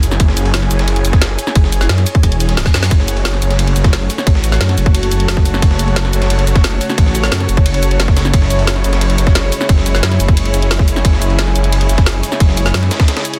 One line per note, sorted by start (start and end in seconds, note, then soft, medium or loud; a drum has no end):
0.00 0.19 F#1 loud
0.00 3.44 E4 medium
0.00 2.91 G#4 medium
0.00 8.34 C#5 medium
0.00 2.91 G#5 medium
0.00 open hi-hat medium
0.00 ride medium
0.00 shaker medium
0.11 snare soft
0.11 shaker soft
0.20 0.69 F#1 loud
0.20 kick loud
0.20 closed hi-hat medium
0.20 ride medium
0.28 snare soft
0.37 closed hi-hat medium
0.37 ride medium
0.37 shaker medium
0.45 ride soft
0.54 snare loud
0.54 closed hi-hat loud
0.62 snare soft
0.62 ride soft
0.71 1.03 F#1 loud
0.71 closed hi-hat medium
0.71 ride medium
0.71 shaker medium
0.79 snare soft
0.79 closed hi-hat soft
0.88 closed hi-hat loud
0.88 ride medium
0.96 closed hi-hat soft
1.05 1.37 F#1 loud
1.05 closed hi-hat medium
1.05 ride medium
1.05 shaker medium
1.13 kick loud
1.13 snare soft
1.13 closed hi-hat soft
1.22 snare loud
1.22 closed hi-hat loud
1.22 ride medium
1.39 open hi-hat medium
1.39 ride medium
1.39 shaker medium
1.47 snare soft
1.47 shaker soft
1.55 1.88 F#1 loud
1.55 kick loud
1.55 closed hi-hat loud
1.55 ride medium
1.64 snare medium
1.72 closed hi-hat medium
1.72 ride medium
1.72 shaker medium
1.81 snare soft
1.81 shaker soft
1.89 2.05 F#2 loud
1.89 snare loud
1.89 closed hi-hat loud
1.89 ride medium
1.98 snare soft
1.98 closed hi-hat soft
2.06 closed hi-hat medium
2.06 ride medium
2.06 shaker medium
2.15 kick loud
2.15 closed hi-hat soft
2.23 2.73 E1 loud
2.23 kick medium
2.23 closed hi-hat loud
2.23 ride medium
2.23 reverse cymbal medium
2.32 closed hi-hat soft
2.32 ride soft
2.40 closed hi-hat medium
2.40 ride medium
2.40 shaker medium
2.49 snare soft
2.49 closed hi-hat soft
2.57 snare loud
2.57 closed hi-hat loud
2.57 ride medium
2.66 kick loud
2.66 snare medium
2.74 2.90 F#2 loud
2.74 snare medium
2.74 snare loud
2.74 open hi-hat medium
2.74 ride medium
2.74 shaker medium
2.83 snare medium
2.83 shaker soft
2.91 3.41 F#1 loud
2.91 13.39 C#3 medium
2.91 8.30 A3 medium
2.91 9.55 F#4 medium
2.91 8.30 F#4 medium
2.91 13.39 C#5 medium
2.91 kick loud
2.91 closed hi-hat loud
2.91 ride medium
2.91 ride bell medium
3.00 8.33 A4 medium
3.00 snare medium
3.08 closed hi-hat medium
3.08 ride medium
3.08 shaker medium
3.17 ride soft
3.25 snare loud
3.25 closed hi-hat loud
3.25 ride bell medium
3.34 snare soft
3.34 ride soft
3.42 3.74 F#1 loud
3.42 closed hi-hat medium
3.42 ride medium
3.42 shaker medium
3.51 snare medium
3.51 closed hi-hat soft
3.58 8.33 A5 medium
3.58 closed hi-hat loud
3.58 ride medium
3.58 ride bell medium
3.67 closed hi-hat soft
3.76 4.08 F#1 loud
3.76 closed hi-hat medium
3.76 ride medium
3.76 shaker medium
3.84 kick loud
3.84 snare soft
3.84 closed hi-hat soft
3.93 snare loud
3.93 closed hi-hat loud
3.93 ride medium
3.93 ride bell medium
4.10 open hi-hat medium
4.10 ride medium
4.10 shaker medium
4.18 snare medium
4.18 shaker soft
4.27 4.59 A1 loud
4.27 kick loud
4.27 closed hi-hat loud
4.27 ride medium
4.27 ride bell medium
4.35 snare medium
4.44 closed hi-hat medium
4.44 ride medium
4.44 shaker medium
4.52 snare soft
4.52 shaker soft
4.61 4.76 F#2 loud
4.61 snare loud
4.61 closed hi-hat loud
4.61 ride medium
4.61 ride bell medium
4.69 snare soft
4.69 closed hi-hat soft
4.78 5.10 F#1 loud
4.78 closed hi-hat medium
4.78 ride medium
4.78 shaker medium
4.86 kick loud
4.86 closed hi-hat soft
4.95 closed hi-hat medium
4.95 ride medium
4.95 ride bell medium
5.03 closed hi-hat soft
5.03 ride soft
5.11 5.61 F#1 medium
5.11 closed hi-hat medium
5.11 ride medium
5.11 shaker medium
5.20 closed hi-hat soft
5.28 snare loud
5.28 closed hi-hat loud
5.28 ride medium
5.28 ride bell medium
5.37 kick loud
5.37 snare medium
5.45 open hi-hat medium
5.45 ride medium
5.45 shaker medium
5.54 snare medium
5.54 shaker soft
5.62 6.12 F#1 loud
5.62 kick loud
5.62 closed hi-hat medium
5.62 ride medium
5.62 ride bell medium
5.71 snare soft
5.79 closed hi-hat medium
5.79 ride medium
5.79 shaker medium
5.88 ride soft
5.96 snare loud
5.96 closed hi-hat medium
5.96 ride medium
5.96 ride bell medium
6.05 snare soft
6.05 ride soft
6.13 6.46 F#1 loud
6.13 closed hi-hat medium
6.13 ride medium
6.13 shaker medium
6.22 snare medium
6.22 closed hi-hat soft
6.30 closed hi-hat medium
6.30 ride medium
6.30 ride bell medium
6.39 closed hi-hat soft
6.47 6.80 F#1 loud
6.47 closed hi-hat medium
6.47 ride medium
6.47 shaker medium
6.56 kick loud
6.56 snare soft
6.56 closed hi-hat soft
6.64 snare loud
6.64 closed hi-hat medium
6.64 ride medium
6.64 ride bell medium
6.81 open hi-hat medium
6.81 ride medium
6.81 shaker medium
6.90 snare soft
6.90 shaker soft
6.98 7.30 A1 loud
6.98 kick loud
6.98 closed hi-hat medium
6.98 ride medium
6.98 ride bell medium
7.06 snare medium
7.15 closed hi-hat medium
7.15 ride medium
7.15 shaker medium
7.24 snare soft
7.24 shaker soft
7.32 7.47 F#2 loud
7.32 snare loud
7.32 closed hi-hat medium
7.32 ride medium
7.32 ride bell medium
7.40 snare soft
7.40 closed hi-hat soft
7.49 8.32 F#1 loud
7.49 closed hi-hat medium
7.49 ride medium
7.49 shaker medium
7.57 kick loud
7.57 closed hi-hat soft
7.66 closed hi-hat medium
7.66 ride medium
7.66 ride bell medium
7.74 closed hi-hat soft
7.74 ride soft
7.83 closed hi-hat medium
7.83 ride medium
7.83 shaker medium
7.91 closed hi-hat soft
8.00 snare loud
8.00 closed hi-hat medium
8.00 ride medium
8.00 ride bell medium
8.08 kick loud
8.08 snare medium
8.17 snare loud
8.17 open hi-hat medium
8.17 ride medium
8.17 shaker medium
8.25 snare soft
8.25 shaker soft
8.33 8.83 F#1 loud
8.33 13.39 G#3 medium
8.33 13.39 E4 medium
8.33 kick loud
8.33 closed hi-hat medium
8.33 ride medium
8.33 ride bell medium
8.42 snare soft
8.50 closed hi-hat medium
8.50 ride medium
8.50 shaker medium
8.55 13.39 G#4 medium
8.55 ride soft
8.67 snare loud
8.67 closed hi-hat medium
8.67 ride bell medium
8.75 13.39 C#5 medium
8.75 snare soft
8.75 ride soft
8.84 9.17 F#1 loud
8.84 closed hi-hat medium
8.84 ride medium
8.84 shaker medium
8.93 snare medium
8.93 closed hi-hat soft
9.01 closed hi-hat medium
9.01 ride medium
9.01 ride bell medium
9.10 13.39 G#5 medium
9.10 closed hi-hat soft
9.18 9.51 F#1 loud
9.18 closed hi-hat medium
9.18 ride medium
9.18 shaker medium
9.27 kick loud
9.27 snare soft
9.27 closed hi-hat soft
9.35 snare loud
9.35 closed hi-hat medium
9.35 ride medium
9.35 ride bell medium
9.52 open hi-hat medium
9.52 ride medium
9.52 shaker medium
9.61 snare soft
9.61 shaker soft
9.69 10.02 F#1 loud
9.69 kick loud
9.69 closed hi-hat medium
9.69 ride medium
9.69 ride bell medium
9.78 snare medium
9.86 closed hi-hat medium
9.86 ride medium
9.86 shaker medium
9.95 snare soft
9.95 shaker soft
10.03 10.19 F#2 loud
10.03 snare loud
10.03 closed hi-hat medium
10.03 ride medium
10.03 ride bell medium
10.12 snare soft
10.12 closed hi-hat soft
10.20 10.52 F#1 loud
10.20 closed hi-hat medium
10.20 ride medium
10.20 shaker medium
10.28 kick loud
10.28 closed hi-hat soft
10.37 closed hi-hat medium
10.37 ride medium
10.37 ride bell medium
10.45 closed hi-hat soft
10.45 ride soft
10.54 11.03 F#1 loud
10.54 closed hi-hat medium
10.54 ride medium
10.54 shaker medium
10.62 closed hi-hat soft
10.71 snare loud
10.71 closed hi-hat medium
10.71 ride medium
10.71 ride bell medium
10.79 kick loud
10.79 snare medium
10.88 open hi-hat medium
10.88 ride medium
10.88 shaker medium
10.96 snare soft
10.96 shaker soft
11.05 11.54 F#1 loud
11.05 kick loud
11.05 closed hi-hat loud
11.05 ride medium
11.05 ride bell medium
11.13 snare soft
11.22 closed hi-hat medium
11.22 ride medium
11.22 shaker medium
11.30 ride soft
11.39 snare loud
11.39 closed hi-hat loud
11.39 ride medium
11.39 ride bell medium
11.47 snare soft
11.47 ride soft
11.56 11.88 F#1 loud
11.56 closed hi-hat medium
11.56 shaker medium
11.64 closed hi-hat soft
11.72 closed hi-hat loud
11.72 ride medium
11.72 ride bell medium
11.81 closed hi-hat soft
11.89 12.22 F#1 loud
11.89 closed hi-hat medium
11.89 ride medium
11.89 shaker medium
11.98 kick loud
11.98 snare soft
11.98 closed hi-hat soft
12.06 snare loud
12.06 closed hi-hat medium
12.06 ride medium
12.06 ride bell medium
12.23 open hi-hat medium
12.23 ride medium
12.23 shaker medium
12.32 snare soft
12.32 shaker soft
12.40 12.73 F#1 loud
12.40 kick loud
12.40 closed hi-hat loud
12.40 ride medium
12.40 ride bell medium
12.49 snare medium
12.57 closed hi-hat medium
12.57 ride medium
12.57 shaker medium
12.66 snare soft
12.66 shaker soft
12.74 12.90 F#2 loud
12.74 snare loud
12.74 closed hi-hat loud
12.74 ride medium
12.74 ride bell medium
12.83 snare soft
12.83 closed hi-hat soft
12.91 snare loud
12.91 closed hi-hat medium
12.91 ride medium
12.91 shaker medium
13.00 kick loud
13.00 snare loud
13.00 closed hi-hat soft
13.00 ride medium
13.08 snare loud
13.08 closed hi-hat loud
13.08 ride medium
13.08 ride bell medium
13.17 snare loud
13.17 closed hi-hat soft
13.17 ride medium
13.25 closed hi-hat medium
13.25 ride medium
13.25 shaker medium
13.34 closed hi-hat soft